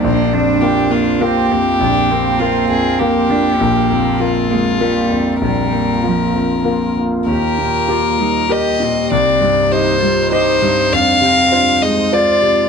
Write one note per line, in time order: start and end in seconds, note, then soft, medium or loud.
0.01 1.77 A#1 medium
0.01 5.38 A#3 soft
0.01 0.34 A#3 medium
0.01 0.63 D4 soft
0.01 5.41 F4 medium
0.01 5.42 A#4 medium
0.33 0.80 F2 soft
0.33 1.23 D4 medium
0.61 0.89 A#3 soft
0.61 0.88 F4 soft
0.61 0.93 G4 medium
0.61 0.89 A#4 soft
0.91 1.19 A#3 soft
0.91 1.24 F4 soft
1.20 1.47 A#3 soft
1.20 1.53 C4 medium
1.20 1.48 F4 soft
1.20 2.41 G4 medium
1.20 1.48 A#4 soft
1.51 1.98 F2 soft
1.51 1.79 A#3 medium
1.80 3.55 A#1 soft
1.80 2.11 D4 medium
2.10 2.39 A#3 soft
2.10 3.02 C4 medium
2.40 2.67 A#3 soft
2.40 2.70 F4 soft
2.40 2.67 F4 soft
2.40 2.67 A#4 soft
2.70 3.18 F2 soft
2.70 3.01 G#4 medium
2.99 3.32 A#3 medium
2.99 3.27 A#3 soft
2.99 3.27 F4 soft
2.99 4.22 G4 soft
2.99 3.27 A#4 soft
3.30 3.77 A#3 soft
3.30 3.62 D4 medium
3.61 5.39 A#1 soft
3.61 4.52 A#3 medium
3.90 4.38 F2 soft
4.20 4.47 A#3 soft
4.20 4.47 F4 soft
4.20 5.43 F4 soft
4.20 4.48 A#4 soft
4.49 4.83 G#3 medium
4.49 4.78 A#3 soft
4.80 5.42 G3 medium
4.80 5.08 A#3 soft
4.80 5.08 F4 soft
4.80 5.08 A#4 soft
5.11 5.61 F2 soft
5.41 7.25 A#1 soft
5.41 6.07 G3 medium
5.41 7.26 A#3 soft
5.41 7.26 F4 soft
5.41 7.26 A#4 medium
5.41 6.96 A#4 soft
5.72 6.02 A#3 soft
6.04 6.67 F3 soft
6.04 6.32 A#3 soft
6.04 6.32 F4 soft
6.04 6.32 A#4 soft
6.34 6.85 F2 soft
6.65 6.94 A#3 soft
6.65 6.94 F4 soft
6.65 6.94 A#4 soft
6.97 7.29 A#3 soft
7.26 9.07 D#2 soft
7.26 9.09 A#3 medium
7.26 10.90 D#4 medium
7.26 9.09 G4 soft
7.26 8.53 A#4 medium
7.30 7.92 G4 medium
7.58 8.08 A#2 soft
7.88 8.23 F4 soft
7.88 8.17 G4 soft
7.88 8.17 A#4 soft
8.19 8.69 G3 soft
8.19 8.51 D#4 soft
8.49 8.78 G4 soft
8.49 8.84 G4 medium
8.49 8.78 A#4 soft
8.49 9.12 D#5 medium
8.80 9.11 A#2 soft
8.80 9.72 C4 medium
9.11 10.89 C2 soft
9.11 10.93 G3 medium
9.11 12.69 C5 medium
9.11 9.74 D5 medium
9.41 9.90 G2 soft
9.72 10.01 D#4 medium
9.72 9.99 G4 soft
9.72 10.31 C5 medium
9.72 9.99 D#5 soft
10.02 10.51 G3 soft
10.02 10.34 F4 medium
10.32 10.94 D#4 medium
10.32 10.59 G4 soft
10.32 10.95 C5 medium
10.32 10.60 D#5 soft
10.62 10.93 G2 soft
10.92 12.69 F2 medium
10.92 12.69 G#3 medium
10.92 11.25 D4 medium
10.92 12.69 F4 medium
10.92 11.84 F5 medium
11.21 11.70 C3 soft
11.21 11.54 C4 medium
11.52 11.85 D4 medium
11.52 11.79 F4 soft
11.52 11.79 C5 soft
11.82 12.31 G#3 soft
11.82 12.14 D#4 medium
11.82 12.15 D#5 medium
12.12 12.40 F4 soft
12.12 12.69 F4 medium
12.12 12.40 C5 soft
12.12 12.69 D5 medium
12.42 12.69 C3 soft